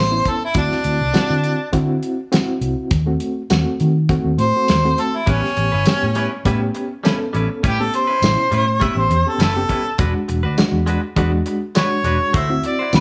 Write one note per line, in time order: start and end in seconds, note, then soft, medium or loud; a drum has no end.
0.00 0.20 A1 medium
0.00 0.30 C5 loud
0.11 0.46 B3 medium
0.11 0.46 C#4 medium
0.11 0.46 E4 medium
0.25 0.42 A4 medium
0.25 kick medium
0.25 closed hi-hat medium
0.45 0.56 E4 medium
0.54 0.68 D2 medium
0.54 1.01 C4 medium
0.54 1.71 D4 medium
0.54 1.02 E4 medium
0.54 1.02 F#4 medium
0.54 kick loud
0.54 closed hi-hat medium
0.72 snare soft
0.84 0.98 D2 medium
0.84 closed hi-hat medium
1.01 1.12 C2 medium
1.13 1.60 C4 medium
1.13 1.60 E4 medium
1.13 1.61 F#4 medium
1.13 snare loud
1.13 closed hi-hat medium
1.13 tambourine loud
1.30 1.54 D3 medium
1.44 closed hi-hat medium
1.72 1.97 D3 loud
1.72 2.19 C4 medium
1.72 2.20 E4 medium
1.72 2.19 F#4 loud
1.72 kick medium
1.72 closed hi-hat medium
2.03 closed hi-hat medium
2.32 2.89 C4 medium
2.32 2.89 E4 medium
2.32 2.90 F#4 loud
2.32 snare loud
2.32 closed hi-hat medium
2.32 tambourine loud
2.61 2.74 C2 medium
2.61 closed hi-hat medium
2.91 3.15 D#2 medium
2.91 kick loud
2.91 closed hi-hat medium
3.06 3.41 A3 medium
3.06 3.41 C4 medium
3.06 3.41 F#4 medium
3.20 closed hi-hat medium
3.50 3.63 D#2 medium
3.50 3.96 A3 medium
3.50 3.97 C4 medium
3.50 3.97 F#4 loud
3.50 snare loud
3.50 closed hi-hat medium
3.50 tambourine loud
3.80 4.17 D#3 loud
3.80 closed hi-hat medium
4.09 4.44 A3 medium
4.09 4.44 C4 medium
4.09 4.44 F#4 loud
4.09 kick medium
4.09 closed hi-hat medium
4.25 4.36 D#2 medium
4.38 4.51 A2 medium
4.38 5.02 C5 loud
4.38 closed hi-hat medium
4.56 4.77 A3 medium
4.56 4.78 C4 medium
4.56 4.78 F#4 medium
4.68 4.93 D#2 medium
4.68 snare loud
4.68 closed hi-hat medium
4.68 tambourine loud
4.85 5.18 A3 medium
4.85 5.18 C4 medium
4.85 5.18 F#4 medium
4.98 5.18 A4 loud
4.98 closed hi-hat medium
5.16 5.32 E4 medium
5.26 5.40 A1 medium
5.26 5.42 G3 medium
5.26 5.74 B3 medium
5.26 5.43 C#4 medium
5.26 5.74 C#4 medium
5.26 5.42 E4 medium
5.26 5.74 G4 medium
5.26 5.41 B4 medium
5.26 kick loud
5.26 closed hi-hat medium
5.30 6.43 C#4 loud
5.43 muted clean electric guitar stroke medium
5.43 snare soft
5.57 5.70 A1 medium
5.57 muted clean electric guitar stroke soft
5.57 closed hi-hat medium
5.72 5.84 G1 loud
5.72 5.86 C#4 soft
5.72 5.87 E4 medium
5.72 5.86 B4 medium
5.86 6.33 B3 medium
5.86 6.33 C#4 medium
5.86 6.33 G4 medium
5.86 muted clean electric guitar stroke soft
5.86 snare loud
5.86 closed hi-hat medium
5.86 tambourine loud
6.03 6.26 A2 medium
6.15 6.31 G3 medium
6.15 6.32 C#4 medium
6.15 6.32 E4 medium
6.15 6.31 B4 medium
6.15 closed hi-hat medium
6.32 muted clean electric guitar stroke soft
6.45 6.69 A2 loud
6.45 6.61 G3 loud
6.45 6.92 B3 loud
6.45 6.92 C#4 medium
6.45 6.61 C#4 medium
6.45 6.61 E4 loud
6.45 6.92 G4 loud
6.45 6.60 B4 loud
6.45 kick medium
6.45 closed hi-hat medium
6.62 muted clean electric guitar stroke soft
6.75 muted clean electric guitar stroke soft
6.75 closed hi-hat medium
7.04 7.19 G3 medium
7.04 7.62 B3 medium
7.04 7.20 C#4 medium
7.04 7.62 C#4 medium
7.04 7.19 E4 medium
7.04 7.62 A4 loud
7.04 7.18 B4 medium
7.04 snare loud
7.04 closed hi-hat medium
7.04 tambourine loud
7.20 muted clean electric guitar stroke soft
7.33 7.47 A1 medium
7.33 7.49 G3 medium
7.33 7.50 C#4 medium
7.33 7.49 E4 medium
7.33 7.48 B4 medium
7.33 closed hi-hat medium
7.50 muted clean electric guitar stroke soft
7.63 7.88 A2 medium
7.63 7.79 G3 medium
7.63 7.79 C#4 medium
7.63 7.79 E4 medium
7.63 7.78 B4 medium
7.63 kick loud
7.63 closed hi-hat medium
7.68 7.82 G4 medium
7.79 8.13 B3 medium
7.79 8.13 C#4 medium
7.79 8.14 G4 medium
7.79 7.93 A4 medium
7.79 muted clean electric guitar stroke soft
7.94 8.85 C5 loud
7.94 muted clean electric guitar stroke soft
7.94 closed hi-hat medium
8.07 8.22 C#4 soft
8.07 8.23 E4 soft
8.07 8.22 B4 medium
8.22 8.35 A1 medium
8.22 8.69 B2 medium
8.22 8.69 C#4 medium
8.22 8.69 E4 medium
8.22 muted clean electric guitar stroke soft
8.22 snare loud
8.22 closed hi-hat medium
8.22 tambourine loud
8.51 8.88 A2 loud
8.51 8.67 G3 medium
8.51 8.67 C#4 medium
8.51 8.66 E4 medium
8.51 8.65 B4 medium
8.51 closed hi-hat medium
8.67 muted clean electric guitar stroke soft
8.80 8.96 G3 medium
8.80 9.16 B3 medium
8.80 8.96 C#4 medium
8.80 9.16 C#4 medium
8.80 8.96 E4 medium
8.80 9.16 G4 medium
8.80 8.94 B4 medium
8.80 8.96 E5 medium
8.80 kick medium
8.80 closed hi-hat medium
8.95 9.07 A1 medium
8.95 9.30 C5 loud
8.95 muted clean electric guitar stroke soft
9.09 9.22 E2 loud
9.09 muted clean electric guitar stroke soft
9.09 closed hi-hat medium
9.26 9.49 B3 medium
9.26 9.49 C#4 medium
9.26 9.49 G4 medium
9.26 9.40 A4 medium
9.38 9.63 F#1 medium
9.38 9.55 G3 medium
9.38 9.55 C#4 medium
9.38 9.54 E4 medium
9.38 9.53 B4 medium
9.38 snare loud
9.38 closed hi-hat medium
9.38 tambourine loud
9.43 9.99 A4 medium
9.54 9.90 B3 medium
9.54 9.90 C#4 medium
9.54 9.90 G4 medium
9.54 muted clean electric guitar stroke soft
9.69 9.85 G3 medium
9.69 9.85 C#4 medium
9.69 9.84 E4 medium
9.69 9.83 B4 medium
9.69 kick medium
9.69 closed hi-hat medium
9.85 muted clean electric guitar stroke soft
9.98 10.12 E1 medium
9.98 10.14 G#3 medium
9.98 10.45 G#3 medium
9.98 10.14 D4 medium
9.98 10.45 D4 medium
9.98 10.14 F#4 medium
9.98 10.46 F#4 medium
9.98 10.13 B4 medium
9.98 kick loud
9.98 closed hi-hat medium
10.14 muted clean electric guitar stroke medium
10.28 10.41 E1 medium
10.28 muted clean electric guitar stroke soft
10.28 closed hi-hat medium
10.43 10.55 D2 medium
10.43 10.57 D4 soft
10.43 10.58 F#4 medium
10.43 10.57 B4 medium
10.58 11.04 G#3 loud
10.58 11.04 D4 medium
10.58 11.04 F#4 loud
10.58 muted clean electric guitar stroke soft
10.58 snare loud
10.58 closed hi-hat medium
10.58 tambourine loud
10.72 10.96 E2 medium
10.86 11.02 G#3 medium
10.86 11.02 D4 medium
10.86 11.01 F#4 medium
10.86 11.01 B4 medium
10.86 closed hi-hat medium
11.02 muted clean electric guitar stroke soft
11.16 11.40 E2 loud
11.16 11.32 G#3 medium
11.16 11.63 G#3 loud
11.16 11.32 D4 medium
11.16 11.64 D4 medium
11.16 11.32 F#4 loud
11.16 11.64 F#4 loud
11.16 11.31 B4 loud
11.16 kick medium
11.16 closed hi-hat medium
11.32 muted clean electric guitar stroke soft
11.46 muted clean electric guitar stroke soft
11.46 closed hi-hat medium
11.75 11.91 G#3 medium
11.75 12.33 G#3 medium
11.75 12.33 D4 medium
11.75 11.91 D4 medium
11.75 12.33 F#4 medium
11.75 11.90 F#4 medium
11.75 11.89 B4 medium
11.75 12.39 C#5 loud
11.75 snare loud
11.75 closed hi-hat medium
11.75 tambourine loud
11.90 muted clean electric guitar stroke soft
12.04 12.17 E1 medium
12.04 12.20 G#3 medium
12.04 12.20 D4 medium
12.04 12.19 F#4 medium
12.04 12.18 B4 medium
12.04 closed hi-hat medium
12.19 muted clean electric guitar stroke soft
12.33 12.58 D2 medium
12.33 12.49 A3 medium
12.33 12.50 E4 medium
12.33 12.50 F#4 medium
12.33 12.49 C5 medium
12.33 12.64 E5 medium
12.33 kick loud
12.33 closed hi-hat medium
12.49 12.84 C4 medium
12.49 12.84 E4 medium
12.49 12.84 F#4 medium
12.49 muted clean electric guitar stroke soft
12.63 12.94 D5 medium
12.63 muted clean electric guitar stroke soft
12.63 closed hi-hat medium
12.79 12.92 E4 soft
12.79 12.93 F#4 soft
12.79 12.93 C5 medium
12.93 13.00 D2 medium
12.93 13.00 C4 medium
12.93 13.00 E4 medium
12.93 13.00 F#4 medium
12.93 13.00 B4 loud
12.93 muted clean electric guitar stroke soft
12.93 snare loud
12.93 closed hi-hat medium
12.93 tambourine loud